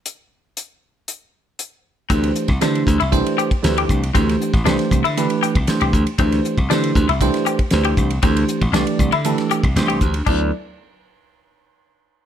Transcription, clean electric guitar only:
X:1
M:4/4
L:1/16
Q:1/4=118
K:Clyd
V:1 name="Clean electric guitar"
z16 | C2 z2 D2 z E2 z G2 z G2 z | C2 z2 D2 z E2 z G2 z G2 z | C2 z2 D2 z E2 z G2 z G2 z |
C2 z2 D2 z E2 z G2 z G2 z | D2 z12 z2 |]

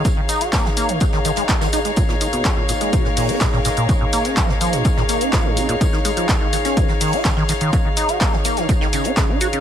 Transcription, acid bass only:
X:1
M:4/4
L:1/16
Q:1/4=125
K:Ebdor
V:1 name="Acid bass" clef=bass
z E, E G B, D, B, E, G, E, E, A, E E, E A, | B,, B,, E, _C, z B,, B,, A, B,, B,, B,, D B,, B,, B,, B,, | D, B,, B, D F, A,, F, B,, D, B,, B, D F, A,, D, B,, | E, E, A, F, E, E, E, D E, E, E, G E, E, E, E, |
G, E, E G B, D, B, E, G, E, D, E D, E G D, |]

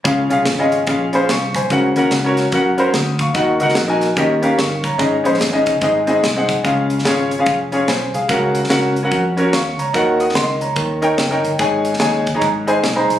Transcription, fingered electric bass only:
X:1
M:4/4
L:1/8
Q:"Swing" 1/4=146
K:Db
V:1 name="Fingered electric bass" clef=bass
D,, C,, A,,,2 B,,,2 C,,2 | D,, E,, D,,2 G,,2 =D,,2 | E,, D,, B,,,2 E,,2 =G,,,2 | A,,, B,,, A,,, G,,, A,,,2 C,,2 |
D,,2 A,,,2 F,,,2 _C,, =C,, | D,,2 D,,2 F,,2 E,, D,, | E,,2 D,,2 E,,2 G,,, =G,,, | A,,,2 E,,2 A,,,2 _C,, =C,, |]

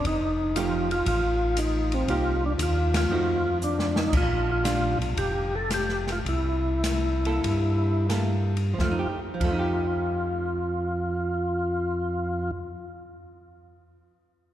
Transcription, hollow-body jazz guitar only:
X:1
M:4/4
L:1/16
Q:"Swing" 1/4=107
K:Fmix
V:1 name="Hollow-body jazz guitar"
z4 [F,A,EG]2 z8 z2 | [B,EG]2 z6 [F,A,E_G]2 z6 | z4 [G,DF]2 z8 z2 | z6 [B,=EA]6 [B,EA]2 z2 |
[F,A,EG] z2 [F,A,EG]12- [F,A,EG]- | [F,A,EG]16 |]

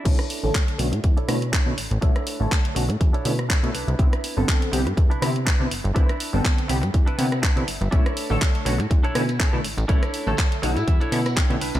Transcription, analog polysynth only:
X:1
M:4/4
L:1/16
Q:"Swing 16ths" 1/4=122
K:Bm
V:1 name="Analog polysynth"
[D,A,CE] z2 [D,A,Ac]3 [D,A,CF] z3 [D,A,CE] z2 [D,A,CE] z2 | [D,A,CE] z2 [D,A,Ac]3 [D,A,CF] z3 [D,A,CE] z2 [D,A,CE] z2 | [D,B,=CE] z2 [D,B,CA]3 [D,B,CG] z3 [D,B,CE] z2 [D,B,CE] z2 | [D,B,=CE] z2 [D,B,CA]3 [D,B,CG] z3 [D,B,CE] z2 [D,B,CE] z2 |
[D,A,CE] z2 [D,A,Ac]3 [D,A,CF] z3 [D,A,CE] z2 [D,A,CE] z2 | [D,A,CE] z2 [D,A,Ac]3 [D,A,CF] z3 [D,A,CE] z2 [D,A,CE] z2 |]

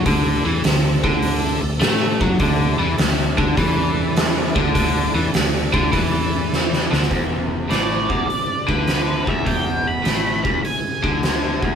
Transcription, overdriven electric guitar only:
X:1
M:4/4
L:1/8
Q:"Swing" 1/4=102
K:Emix
V:1 name="Overdriven electric guitar" clef=bass
D, E, D, D,2 D, A, F, | D, E, D, D, E,3 D, | D, E, D, D, E,3 D, | E,,2 A,, E,, z D,2 E,, |
E,,2 A,, E,, z D,2 E,, |]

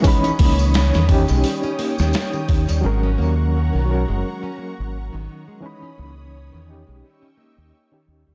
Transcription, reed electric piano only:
X:1
M:4/4
L:1/16
Q:"Swing 16ths" 1/4=86
K:G#m
V:1 name="Reed electric piano"
[E,CDb]6 [CD=G]8- [CDG]2 | [F,CA]6 [F,CA]8- [F,CA]2 | [E,CDb]6 [CD=G]6- [CDG] [CDG]3 |]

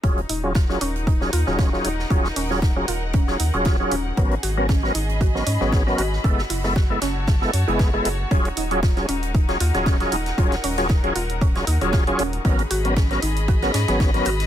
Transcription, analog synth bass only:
X:1
M:4/4
L:1/16
Q:"Swing 16ths" 1/4=116
K:Ebm
V:1 name="Analog synth bass" clef=bass
E,,,2 E,,,4 E,,,4 E,, E,,,3 E,,,2 | E,,,2 E,,,4 E,,,4 E,, E,,,3 E,,,2 | A,,,2 A,,,4 A,,,4 A,, A,,,3 A,,,2 | G,,,2 G,,,4 G,,,4 G,, G,,,3 G,,,2 |
E,,,2 E,,,4 E,,,4 E,, E,,,3 E,,,2 | E,,,2 E,,,4 E,,,4 E,, E,,,3 E,,,2 | A,,,2 A,,,4 A,,,4 A,, A,,,3 A,,,2 |]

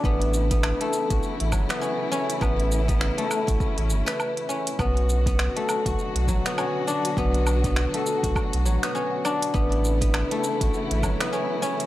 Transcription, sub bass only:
X:1
M:4/4
L:1/16
Q:"Swing 16ths" 1/4=101
K:Amix
V:1 name="Sub bass" clef=bass
A,,,4- A,,, z2 A,,, z A,,, G,,, z4 z | A,,,4- A,,, z2 A,,, z A,,, G,,, z4 z | B,,,4- B,,, z2 B,,, z B,,, A,,, z4 z | B,,,4- B,,, z2 B,,, z B,,, A,,, z4 z |
A,,,4- A,,, z2 A,,, z A,,, G,,, z4 z |]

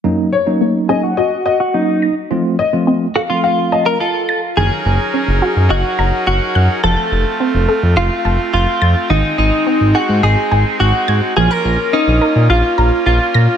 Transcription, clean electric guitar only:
X:1
M:4/4
L:1/16
Q:1/4=106
K:Gblyd
V:1 name="Clean electric guitar"
z6 A G4 G E3 z | z6 G F4 B [F=A]4 | A8 G4 G4 | =A8 F4 F4 |
E2 E4 G2 A4 G4 | A B3 E4 F4 F4 |]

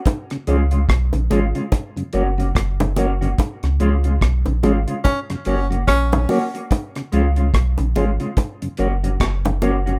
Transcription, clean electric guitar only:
X:1
M:4/4
L:1/16
Q:"Swing 16ths" 1/4=72
K:Dbmix
V:1 name="Clean electric guitar"
z2 [A,DF] [A,DF] z2 [A,DF] [A,DF] z2 [B,DG] [B,DG] z2 [B,DG] [B,DG] | z2 [A,DF] [A,DF] z2 [A,DF] [A,DF] z2 [B,DG] [B,DG] z2 [B,DG] [B,DG] | z2 [A,DF] [A,DF] z2 [A,DF] [A,DF] z2 [B,DG] [B,DG] z2 [B,DG] [B,DG] |]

